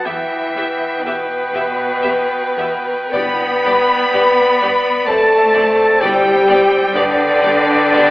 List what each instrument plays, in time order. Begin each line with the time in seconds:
Already playing: bassoon B3, clarinet B4
0.05 double bass section E2, cello section E3, viola section B3 G4, french horn section E4, violin section E5, flute section E5, oboe G5
0.55 double bass section E2, viola section B3 G4, violin section E5
1.01 double bass section E2, french horn section B3, violin section B4, flute section B4
1.05 cello section B2, viola section B3 G4, violin section E5
1.52 double bass section E2, viola section B3 G4, violin section E5
2.02 double bass section E2, viola section B3 G4, violin section E5
2.57 double bass section E2, viola section B3 G4, violin section E5
3.11 timpani G2, double bass section G2, bassoon B3, viola section B3 G4, cello section B3, french horn section B4, violin section D5 B5, clarinet D5, flute section B5
3.65 double bass section G2, viola section B3 G4, violin section D5
4.12 double bass section G2, viola section B3 G4, violin section D5
4.59 double bass section G2, viola section B3 G4, violin section D5
5.05 double bass section F#2, cello section A3, bassoon C4, viola section C4 A4, french horn section A4, violin section D5 A5, oboe A5, flute section A5
5.54 double bass section F#2, viola section C4 A4, violin section D5
6.00 double bass section G2, timpani G2, cello section G3, viola section B3 G4, french horn section G4, violin section D5 G5, oboe G5, flute section G5
6.48 double bass section G2, viola section B3 G4, violin section D5
6.94 double bass section G2, cello section D3, viola section B3 G4, bassoon B3, french horn section D4, violin section D5
6.98 flute section D5
7.41 double bass section G2, viola section B3 G4, violin section D5
7.92 double bass section G2, viola section B3 G4, violin section D5